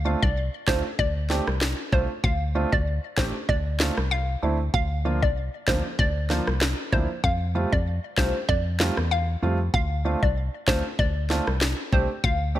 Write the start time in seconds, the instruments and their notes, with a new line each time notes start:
Already playing: fm bass D2
0.05 grand piano A3 C4 D4 F4
0.22 fm bass C2, synth pluck D5, kick
0.67 fm bass D2, grand piano A3 C4 D4 F4, synth pluck C5, kick, snare
0.99 fm bass D2, synth pluck D5, kick
1.30 grand piano A3 C4 D4 G4, snare
1.47 fm bass C2, cross-stick
1.61 snare
1.92 fm bass C2, grand piano A3 C4 D4 F4, synth pluck C5, kick
2.24 fm bass D2, synth pluck F5, kick
2.55 grand piano A3 C4 D4 F4
2.72 fm bass D2, synth pluck D5, kick
3.17 fm bass A1, grand piano A3 C4 D4 G4, synth pluck C5, kick, snare
3.49 fm bass D2, synth pluck D5, kick
3.80 grand piano A3 C4 D4 F4, snare
3.97 fm bass C2, cross-stick
4.11 synth pluck F5
4.42 fm bass D2, grand piano A3 C4 D4 E4
4.74 fm bass D2, synth pluck F5, kick
5.05 grand piano F3 A#3 D4 F4
5.22 fm bass C2, synth pluck D5, kick
5.67 fm bass D2, grand piano F3 A#3 D4 F4, synth pluck C5, kick, snare
5.99 fm bass D2, synth pluck D5, kick
6.30 grand piano F3 A#3 D4 F4, snare
6.47 fm bass C2, cross-stick
6.61 snare
6.92 fm bass D2, grand piano F3 A#3 D4 E4, synth pluck C5, kick
7.24 fm bass F2, synth pluck F5, kick
7.55 grand piano G3 A3 C4 F4
7.72 fm bass F2, synth pluck D5, kick
8.17 fm bass C2, grand piano G3 A3 C4 F4, synth pluck C5, kick, snare
8.49 fm bass F2, synth pluck D5, kick
8.80 grand piano G3 A3 C4 F4, snare
8.97 fm bass E2, cross-stick
9.11 synth pluck F5
9.42 fm bass F2, grand piano G3 A3 C4 F4
9.74 fm bass D2, synth pluck F5, kick
10.05 grand piano A3 C4 D4 F4
10.23 fm bass C2, synth pluck D5, kick
10.67 fm bass D2, grand piano A3 C4 D4 F4, synth pluck C5, kick, snare
10.99 fm bass D2, synth pluck D5, kick
11.30 grand piano A3 C4 D4 F4, snare
11.47 fm bass C2, cross-stick
11.61 snare
11.92 fm bass C2, grand piano A3 C4 D4 G4, synth pluck C5, kick
12.24 fm bass D2, synth pluck F5, kick
12.55 grand piano A3 C4 D4 G4